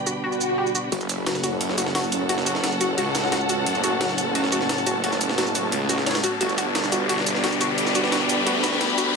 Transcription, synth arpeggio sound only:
0.07 0.19 F#4 medium
0.24 0.32 F#4 medium
0.58 0.66 G4 medium
0.75 0.84 F#4 medium
0.92 1.01 F#4 medium
1.26 1.39 F#4 medium
1.44 1.52 F#4 medium
1.78 1.91 F#4 medium
1.95 2.03 F#4 medium
2.29 2.42 F#4 medium
2.46 2.55 F#4 medium
2.81 2.93 F#4 medium
2.98 3.06 F#4 medium
3.32 3.45 F#4 medium
3.49 3.58 F#4 medium
3.84 3.96 F#4 medium
4.01 4.09 F#4 medium
4.35 4.48 F#4 medium
4.52 4.61 F#4 medium
4.86 4.99 F#4 medium
5.04 5.12 F#4 medium
5.38 5.51 F#4 medium
5.55 5.64 F#4 medium
5.89 5.98 F#4 medium
6.06 6.19 C#5 medium
6.24 6.32 F#4 medium
6.41 6.53 F#4 medium
6.58 6.66 F#4 medium
6.92 7.05 F#4 medium
7.09 7.18 F#4 medium
7.44 7.56 F#4 medium
7.61 7.69 F#4 medium
7.95 8.08 F#4 medium
8.12 8.21 F#4 medium
8.46 8.59 F#4 medium
8.64 8.72 F#4 medium
8.98 9.11 F#4 medium

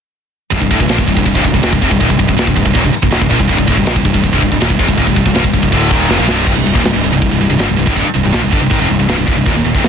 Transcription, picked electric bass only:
0.52 0.61 C1 medium
0.62 0.70 C1 medium
0.70 0.79 D1 medium
0.80 0.88 C1 medium
0.90 0.98 A#1 medium
0.98 1.07 C1 medium
1.08 1.16 C1 medium
1.17 1.25 C1 medium
1.26 1.35 C1 medium
1.35 1.44 C1 medium
1.45 1.53 C1 medium
1.54 1.62 C1 medium
1.63 1.72 D#1 medium
1.73 1.81 C1 medium
1.82 1.90 F1 medium
1.91 2.00 C1 medium
2.01 2.09 D#1 medium
2.10 2.18 C1 medium
2.19 2.28 C1 medium
2.29 2.36 C1 medium
2.37 2.46 C1 medium
2.47 2.56 C1 medium
2.57 2.65 C1 medium
2.66 2.74 C1 medium
2.75 2.83 D#1 medium
2.84 2.93 C1 medium
2.94 muted picked electric bass stroke soft
3.03 3.11 C1 medium
3.12 3.21 D1 medium
3.21 3.30 C1 medium
3.31 3.39 A#1 medium
3.40 3.49 C1 medium
3.49 3.58 C1 medium
3.59 3.67 C1 medium
3.68 3.76 D1 medium
3.77 3.86 C1 medium
3.86 3.95 A#1 medium
3.96 4.04 C1 medium
4.05 4.13 C1 medium
4.14 4.23 C1 medium
4.24 4.32 C1 medium
4.33 4.41 C1 loud
4.42 4.51 C1 medium
4.52 4.60 C1 medium
4.61 4.69 D#1 loud
4.70 4.79 C1 medium
4.79 4.88 F1 loud
4.89 4.97 C1 medium
4.98 5.06 D#1 medium
5.07 5.16 C1 medium
5.16 5.25 C1 medium
5.25 5.34 C1 medium
5.34 5.43 C1 loud
5.44 5.53 C1 medium
5.53 5.62 C1 medium
5.63 5.72 C1 medium
5.72 5.90 D1 medium
5.91 6.08 D#1 medium
6.09 6.18 F1 medium
6.19 6.27 A#1 medium
6.28 6.45 C1 medium
6.47 6.55 C1 medium
6.56 6.65 C1 medium
6.65 6.74 C1 medium
6.75 6.83 D#1 medium
6.84 6.93 C1 medium
6.94 7.02 C1 medium
7.03 7.12 C1 medium
7.13 7.21 C1 medium
7.22 7.30 C1 medium
7.31 7.39 C1 medium
7.40 7.49 C1 medium
7.50 7.58 C1 medium
7.59 7.68 G1 medium
7.69 7.77 C1 medium
7.78 7.86 C1 medium
7.87 7.96 D1 medium
7.97 8.05 C1 medium
8.06 muted picked electric bass stroke soft
8.16 8.24 C1 medium
8.25 8.33 C1 medium
8.34 8.43 A#1 medium
8.44 8.52 C1 medium
8.52 8.61 G1 medium
8.62 8.70 C1 medium
8.71 8.79 G#1 medium
8.80 8.89 F1 medium
8.89 8.98 C1 medium
8.99 9.08 C1 medium
9.09 9.17 C1 medium
9.18 9.27 C1 medium
9.28 9.35 D#1 medium
9.36 9.45 C1 medium
9.46 9.54 D#1 medium
9.54 9.63 D#1 medium
9.64 9.73 D#1 medium
9.75 9.82 F1 medium
9.82 9.89 D#1 medium

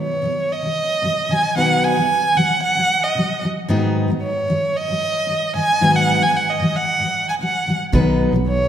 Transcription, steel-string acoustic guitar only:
0.22 0.44 B2 soft
0.22 0.45 D#3 medium
0.22 0.46 F#3 medium
0.62 0.84 B2 soft
0.62 0.85 D#3 soft
0.62 0.86 F#3 soft
1.02 1.24 B2 medium
1.02 1.25 D#3 medium
1.02 1.25 F#3 medium
1.29 1.50 B2 medium
1.29 1.52 D#3 medium
1.29 1.52 F#3 medium
1.55 1.94 B2 medium
1.55 1.96 D#3 medium
1.55 1.96 F#3 medium
1.55 1.96 B3 medium
1.55 1.97 D#4 medium
1.55 1.97 B4 medium
1.95 2.17 B2 soft
1.95 2.18 D#3 soft
1.95 2.19 F#3 soft
2.35 2.57 B2 medium
2.35 2.58 D#3 medium
2.35 2.58 F#3 medium
2.75 2.97 B2 soft
2.75 2.98 D#3 soft
2.75 2.99 F#3 soft
3.15 3.37 B2 medium
3.15 3.38 D#3 medium
3.15 3.38 F#3 medium
3.41 3.63 G#2 medium
3.41 3.64 D#3 soft
3.41 3.65 F#3 medium
3.69 4.07 G#2 medium
3.69 4.09 D#3 medium
3.69 4.09 F#3 medium
3.69 4.09 B3 medium
3.69 4.09 D#4 medium
3.69 4.10 B4 medium
4.08 4.30 G#2 soft
4.08 4.31 D#3 soft
4.08 4.31 F#3 soft
4.48 4.69 G#2 soft
4.48 4.70 D#3 medium
4.48 4.71 F#3 medium
4.88 5.10 G#2 soft
4.88 5.10 D#3 soft
4.88 5.11 F#3 soft
5.27 5.49 G#2 medium
5.27 5.50 D#3 medium
5.27 5.50 F#3 medium
5.54 5.76 G#2 medium
5.54 5.77 D#3 medium
5.54 5.77 F#3 medium
5.80 6.19 G#2 medium
5.80 6.21 D#3 medium
5.80 6.21 F#3 medium
5.80 6.21 B3 medium
5.80 6.22 D#4 medium
5.80 6.22 B4 medium
6.20 6.42 G#2 soft
6.20 6.43 D#3 soft
6.20 6.43 F#3 soft
6.60 6.81 G#2 medium
6.60 6.83 D#3 medium
6.60 6.83 F#3 medium
6.99 7.21 G#2 soft
6.99 7.22 D#3 soft
7.03 7.23 F#3 soft
7.39 7.61 G#2 soft
7.39 7.62 D#3 soft
7.39 7.63 F#3 medium
7.66 7.88 G#2 soft
7.66 7.88 D#3 medium
7.66 7.89 F#3 medium
7.92 8.31 B2 medium
7.92 8.33 D#3 medium
7.92 8.33 F#3 medium
7.92 8.33 B3 medium
7.92 8.33 D#4 medium
7.92 8.34 B4 medium
8.32 8.54 B2 soft
8.32 8.55 D#3 soft
8.32 8.56 F#3 soft

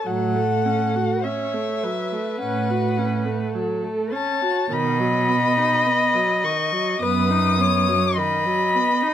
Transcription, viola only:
0.07 0.37 F#3 medium
0.36 0.67 A3 medium
0.65 0.97 C#4 medium
0.95 1.26 F#4 soft
1.24 1.56 C#4 medium
1.54 1.85 A3 medium
1.83 2.14 F#3 soft
2.12 2.40 A3 soft
2.41 2.71 C#4 medium
2.69 2.99 F#4 medium
2.98 3.27 C#4 medium
3.26 3.56 A3 medium
3.54 3.84 F#3 medium
3.83 4.14 A3 medium
4.12 4.43 C#4 medium
4.42 4.71 F#4 medium
4.71 5.02 D#3 medium
5.00 5.30 F#3 medium
5.28 5.59 B3 medium
5.57 5.88 D#4 medium
5.86 6.16 B3 medium
6.15 6.46 F#3 medium
6.44 6.74 D#3 medium
6.72 7.00 F#3 medium
7.01 7.32 B3 medium
7.30 7.60 D#4 medium
7.58 7.89 B3 medium
7.88 8.19 F#3 medium
8.18 8.47 D#3 medium
8.46 8.76 F#3 medium
8.75 9.04 B3 medium
9.03 9.14 D#4 medium

